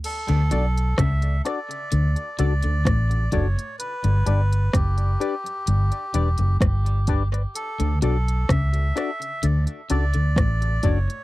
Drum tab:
CC |x---------------|----------------|----------------|
HH |xxxxxxxxxxxxxxxx|xxxxxxxxxxxxxxxx|xxxxxxxxxxxxxxxx|
SD |----r-r-----r---|----r-------r---|----r-r-----r---|
BD |----o-------o-o-|----o-------o-o-|----o-------o-o-|